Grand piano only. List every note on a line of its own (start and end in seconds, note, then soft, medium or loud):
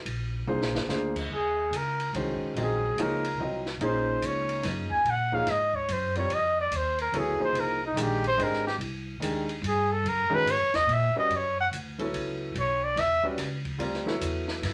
0.47 0.87 A#3 medium
0.47 0.88 D4 medium
0.47 0.88 F4 medium
0.47 0.88 G#4 medium
0.47 0.88 C5 medium
0.89 1.13 A#3 medium
0.89 1.14 D4 medium
0.89 1.14 F4 medium
0.89 1.14 G#4 medium
0.89 1.14 C5 medium
2.15 2.78 D#3 medium
2.15 2.78 G#3 soft
2.15 2.78 C#4 medium
2.15 2.78 F#4 medium
2.15 2.78 C5 medium
2.56 2.96 F#3 medium
2.56 2.96 C4 medium
2.56 2.96 F4 soft
2.56 2.97 A#4 medium
2.56 2.97 D#5 medium
2.99 3.22 F3 medium
2.99 3.23 A#3 medium
2.99 3.23 D#4 medium
2.99 3.23 G#4 medium
2.99 3.23 C#5 medium
3.39 3.63 F#3 medium
3.39 3.63 C4 medium
3.39 3.64 F4 medium
3.39 3.64 A#4 medium
3.39 3.64 D#5 medium
3.81 4.97 F3 medium
3.81 4.97 A#3 medium
3.81 4.98 C#4 medium
3.81 4.97 D#4 medium
3.81 4.97 G#4 medium
5.32 5.46 F3 medium
5.32 5.46 A#3 medium
5.32 5.46 D#4 medium
5.32 5.46 G#4 medium
5.32 5.46 C#5 medium
6.16 6.29 G3 medium
6.16 6.29 C4 medium
6.16 6.29 F4 medium
6.16 6.30 A#4 medium
6.16 6.30 D5 medium
7.13 7.38 F#3 medium
7.13 7.38 B3 medium
7.13 7.38 E4 medium
7.13 7.38 A4 medium
7.13 7.38 C#5 medium
7.39 7.76 F3 medium
7.39 7.77 A#3 medium
7.39 7.77 D#4 medium
7.39 7.77 G#4 medium
7.39 7.77 C5 medium
7.96 8.21 D#3 medium
7.96 8.21 G#3 medium
7.96 8.21 D4 medium
7.96 8.22 G4 medium
7.96 8.21 A#4 medium
8.37 8.62 G#3 medium
8.37 8.63 D4 medium
8.37 8.63 G4 medium
8.37 8.63 C5 medium
8.37 8.63 D#5 medium
9.20 9.45 D#3 medium
9.20 9.46 G#3 medium
9.20 9.46 D4 medium
9.20 9.46 G4 medium
9.20 9.47 A#4 medium
10.30 10.45 D#3 medium
10.30 10.44 G#3 medium
10.30 10.45 C#4 medium
10.30 10.45 F#4 medium
10.30 10.45 A#4 medium
11.15 11.29 G3 medium
11.15 11.29 C#4 medium
11.15 11.29 F#4 medium
11.15 11.30 B4 medium
11.15 11.30 D5 medium
11.98 12.52 F#3 medium
11.98 12.52 B3 medium
11.98 12.53 E4 medium
11.98 12.53 A4 medium
11.98 12.53 C#5 medium
13.23 13.37 G3 medium
13.23 13.37 C#4 medium
13.23 13.37 F#4 medium
13.23 13.37 B4 medium
13.23 13.38 D5 medium
13.78 14.03 G3 medium
13.78 14.03 C4 medium
13.78 14.04 F4 medium
13.78 14.04 A#4 medium
13.78 14.04 D5 medium
14.06 14.73 F#3 medium
14.06 14.73 B3 medium
14.06 14.73 E4 medium
14.06 14.73 A4 medium
14.06 14.73 C#5 medium